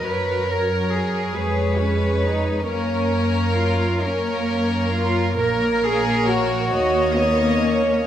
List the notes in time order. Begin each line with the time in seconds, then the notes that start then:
0.04 F#2 F#3 A#4 B4 C#5
0.49 A#4
0.92 G#4
1.35 F2 G#3 B4 C#5
1.78 C#4
2.23 D#4
2.68 F#2 A#3 C#4 A#4 C#5
3.58 F4
4.03 A#3 C#4 A#4 C#5
4.94 F4
5.39 A#1 A#3 A#4 C#5
5.84 G#4
6.27 F#4
6.73 D#2 A#3 C#5 D#5
7.17 B3
7.63 C#4